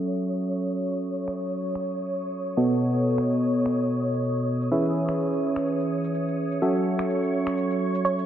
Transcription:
Already playing: F#3 C#4 F#4 A4 C#5 E5 D#6
0.09 shaker
0.33 shaker
0.43 shaker
0.57 shaker
0.80 shaker
0.91 shaker
1.04 shaker
1.28 finger snap, shaker
1.38 shaker
1.52 shaker
1.75 finger snap, shaker
1.86 shaker
1.99 shaker
2.23 shaker
2.34 shaker
2.47 shaker
2.57 B2 B3 F#4 A4 D#5
2.71 shaker
2.81 shaker
2.95 shaker
3.18 finger snap, shaker
3.29 shaker
3.42 shaker
3.66 finger snap, shaker
3.76 shaker
3.90 shaker
4.14 shaker
4.24 shaker
4.37 shaker
4.61 shaker
4.71 E3 C#4 G#4 B4 E5, shaker
4.85 shaker
5.09 finger snap, shaker
5.19 shaker
5.33 shaker
5.56 finger snap, shaker
5.67 shaker
5.80 shaker
6.04 shaker
6.15 shaker
6.28 shaker
6.52 shaker
6.62 F#3 C#4 F#4 A4 C#5 E5 C#6, shaker
6.76 shaker
6.99 finger snap, shaker
7.10 shaker
7.23 shaker
7.47 finger snap, shaker
7.58 shaker
7.71 shaker
7.95 shaker
8.05 C#5, shaker
8.19 shaker

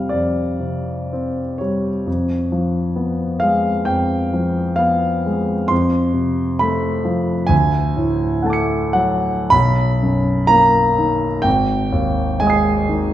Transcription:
Already playing: F2 C3 G3 C4 F5 G5
0.09 F2 D5
0.60 C3
1.13 C4
1.58 G3 C#5
2.06 F2
2.52 F3
2.96 B3
3.40 G#3 F5
3.85 F2 G5
4.34 F3
4.76 B3 F5
5.26 G#3
5.68 F2 C6
6.13 C3
6.59 A3 B5
7.05 F3
7.47 D2 G#5
7.96 A2
8.43 A3 F#5 A5
8.50 D6 C#7
8.93 F#3 F#5
9.50 B1 B5
10.02 F#2
10.47 A#3 A#5
10.98 D#3
11.42 G#1 G5
11.92 D#2
12.40 G#3 D#5 G#5
12.47 D#6 C7
12.89 D#3

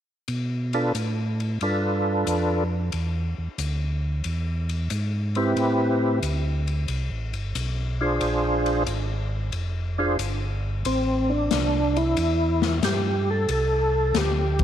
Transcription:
0.28 B2, ride
0.73 D4 F4 A4 B4, ride
0.95 A2, hi-hat pedal, ride
1.40 ride
1.61 G2 D4 F4 A4 B4, ride
2.27 F2, hi-hat pedal, ride
2.92 E2, ride
3.38 E2
3.58 D2, hi-hat pedal, ride
4.24 E2, ride
4.69 ride
4.90 G#2, hi-hat pedal, ride
5.35 C4 E4 G4 B4, ride
5.56 A2, ride
6.22 D2, hi-hat pedal, ride
6.67 ride
6.88 C2, ride
7.10 A1
7.33 G1, ride
7.55 B1, hi-hat pedal, ride
8.01 D4 F4 G#4 C5
8.21 A#1, ride
8.66 ride
8.87 G#1, hi-hat pedal, ride
9.52 F1, ride
9.98 D4 F4 G#4 C5
10.19 G1, hi-hat pedal, ride
10.85 A1 C4, ride
11.30 D4
11.51 C2, snare, hi-hat pedal, ride
11.96 E4, ride
12.17 E2, ride
12.62 snare
12.82 G2 G4, snare, hi-hat pedal, ride
13.31 A4
13.48 C2 A4, ride
14.14 D2 G4, snare, hi-hat pedal, ride
14.59 kick, ride

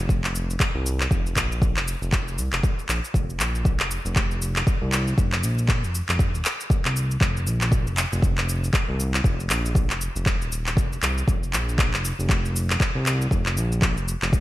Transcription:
0.00 F1
0.09 kick, cabasa
0.24 clap, cabasa
0.35 cabasa
0.50 cabasa
0.60 kick, clap, cabasa
0.75 C2
0.86 cabasa
1.00 clap, cabasa
1.11 F1, kick, cabasa
1.26 cabasa
1.36 A#1, kick, clap, cabasa
1.52 cabasa
1.62 kick, cabasa
1.76 F1, clap, cabasa
1.88 cabasa
2.02 F1, cabasa
2.12 kick, clap, cabasa
2.28 cabasa
2.38 C2, cabasa
2.53 F1, clap, cabasa
2.63 kick, cabasa
2.79 cabasa
2.89 A#1, clap, cabasa
3.04 cabasa
3.14 F1, kick, cabasa
3.30 cabasa
3.39 A#1, clap, cabasa
3.55 cabasa
3.65 kick, cabasa
3.80 F1, clap, cabasa
3.91 cabasa
4.05 F1, cabasa
4.16 kick, clap, cabasa
4.31 cabasa
4.42 cabasa
4.56 clap, cabasa
4.67 kick, cabasa
4.81 C2
4.92 clap, cabasa
5.08 cabasa
5.18 F1, kick, cabasa
5.32 clap, cabasa
5.43 A#1, cabasa
5.58 cabasa
5.68 kick, clap, cabasa
5.83 F1, cabasa
5.95 cabasa
6.09 F1, clap, cabasa
6.19 kick, cabasa
6.34 D#1, cabasa
6.45 clap, cabasa
6.60 cabasa
6.70 kick, cabasa
6.85 C2, clap, cabasa
6.96 cabasa
7.11 cabasa
7.21 F1, kick, clap, cabasa
7.37 cabasa
7.47 A#1, cabasa
7.61 clap, cabasa
7.72 kick, cabasa
7.87 F1, cabasa
7.97 clap, cabasa
8.12 F1, cabasa
8.22 kick, cabasa
8.38 clap, cabasa
8.49 cabasa
8.64 cabasa
8.73 kick, clap, cabasa
8.88 C2
9.00 cabasa
9.14 clap, cabasa
9.24 F1, kick, cabasa
9.40 cabasa
9.50 A#1, clap, cabasa
9.66 cabasa
9.75 kick, cabasa
9.90 F1, clap, cabasa
10.01 cabasa
10.16 F1, cabasa
10.26 kick, clap, cabasa
10.41 D#1, cabasa
10.52 cabasa
10.66 clap, cabasa
10.77 F1, kick, cabasa
10.93 cabasa
11.02 C2, clap, cabasa
11.18 cabasa
11.28 F1, kick, cabasa
11.43 cabasa
11.53 A#1, clap, cabasa
11.69 cabasa
11.78 kick, clap, cabasa
11.93 F1, clap, cabasa
12.05 cabasa
12.19 F1, cabasa
12.29 kick, clap, cabasa
12.45 cabasa
12.56 cabasa
12.70 clap, cabasa
12.80 kick, clap, cabasa
12.95 C2
13.06 clap, cabasa
13.22 cabasa
13.31 F1, kick, cabasa
13.46 clap, cabasa
13.57 A#1, cabasa
13.72 cabasa
13.82 kick, clap, cabasa
13.97 F1, cabasa
14.08 cabasa
14.22 F1, clap, cabasa
14.33 kick, cabasa

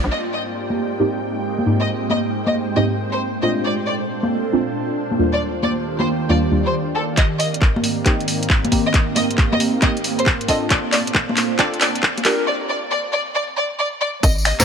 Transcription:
Already playing: F4 D5 G5
0.04 A#1
0.11 G#2 G#3 A#3 C4 D#4 G4 D#5
0.34 D#5
0.45 C5
0.70 high conga
1.00 G#2 A#3 C4 D#4 G4
1.59 high conga
1.66 G#2 A#3 C4 D#4 G4
1.80 D#5
2.10 D#5, high conga
2.47 D#5, high conga
2.76 G#2 A#3 C4 D#4 G4 D#5, high conga
3.13 C5
3.42 A#2 A3 C4 D4 F4 D#5
3.64 A#2 D4 F4 A4 D5
3.87 D5
4.23 high conga
4.53 A#2 A3 C4 D4 F4
5.11 high conga
5.19 D#2 G3 A#3 D4 F4
5.33 D5
5.41 D#3 A#3 D4 G4
5.60 D5, high conga
6.00 C5, high conga
6.22 F5 G5
6.29 D#2 G3 A#3 D4 F4 D5, high conga
6.51 D#2 G3 A#3 D4 F4
6.66 C5
6.95 A4
7.17 G#2 C4 D#4 G4 A#4 D#5, kick, clap, closed hi-hat
7.34 A#3
7.39 D#5, open hi-hat
7.54 closed hi-hat
7.62 kick, clap
7.76 high conga
7.84 open hi-hat
8.05 A#3 C4 D#4 G4, kick, clap, closed hi-hat
8.21 closed hi-hat
8.28 open hi-hat
8.43 closed hi-hat
8.50 kick, clap
8.65 closed hi-hat, high conga
8.72 A#3 C4 D#4 G4, kick, open hi-hat
8.86 D#5
8.94 kick, clap, closed hi-hat
9.16 D#5, open hi-hat, high conga
9.31 closed hi-hat
9.38 kick, clap
9.52 D#5, high conga
9.60 open hi-hat
9.82 A#3 C4 D#4 G4 D#5, kick, clap, closed hi-hat, high conga
9.97 closed hi-hat
10.04 open hi-hat
10.19 C5, closed hi-hat
10.26 kick, clap
10.41 closed hi-hat
10.48 C4 D4 F4 A4 D#5, kick, open hi-hat
10.70 A#2 D4 F4 A4 C5 D5, kick, clap, closed hi-hat
10.92 D5, clap, open hi-hat
11.06 D5, closed hi-hat
11.15 kick, clap
11.29 high conga
11.37 clap, open hi-hat
11.53 A5
11.59 C4 D4 F4 A4 D5, kick, clap, closed hi-hat
11.74 closed hi-hat
11.81 D5, clap, open hi-hat
11.95 closed hi-hat
12.03 kick, clap
12.18 closed hi-hat, high conga
12.25 D4 F4 G4 A#4, kick, clap, open hi-hat
12.47 D5
12.69 D5
12.91 D5
13.13 D5
13.35 D5
13.57 D5
13.79 D5
14.01 D5
14.23 G#1 C4 D#4 G4 A#4 D#5, kick, closed hi-hat, tambourine
14.38 tambourine
14.45 D#5, finger snap, open hi-hat
14.60 G#2, finger snap, snare, closed hi-hat, tambourine

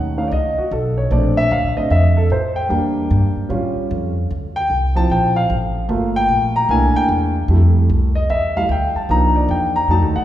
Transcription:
Already playing: D#2 A3 C#4 D#4 F#5
0.17 A3 C#4 D#4 F5
0.28 C#2 D5
0.33 D#5
0.58 F#4, muted upright bass stroke
0.71 B1 A4
0.98 C#5
1.11 A#1 A3 C4 D4 D5
1.37 E5
1.51 D2 F5
1.64 A#1
1.77 A1 A3 C4 D4 D#5
1.90 F2 E5
2.17 A4
2.30 A2 C5
2.56 G5
2.69 E2 G3 A#3 D4
3.11 G2
3.36 muted upright bass stroke
3.49 A2 G3 C#4 F4
3.76 muted upright bass stroke
3.91 F2
4.31 D2
4.56 G5
4.70 C2
4.95 F3 C4 E4 A5
5.10 A#1 G5
5.36 F5
5.50 A1
5.89 G1 A3 A#3 F4
6.16 G5
6.29 A#1
6.56 A#5
6.69 C2 A3 A#3 D4 E4 G#5
6.95 G5, muted upright bass stroke
7.09 E2
7.48 F2 G3 A3 E4
7.90 C2
8.15 D#5
8.30 E2 E5
8.56 G3 A3 E4 F5
8.69 D2 G5
8.95 A5, muted upright bass stroke
9.09 C2 F3 A#3 D4 D#4 A#5
9.36 D5
9.49 E2 G5
9.76 A#5
9.88 F2 F#3 A3 D#4 A5
10.02 D#2
10.16 C2 F#5

